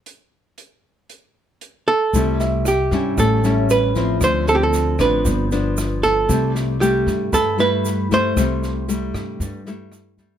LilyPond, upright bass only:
\new Staff \with { instrumentName = "Upright bass" } { \clef bass \time 4/4 \key c \major \tempo 4 = 116 r1 | c,4. g,8 a,,2 | d,4. a,,8 g,,2 | c,4. g,8 g,2 |
c,4. g,8 g,2 | }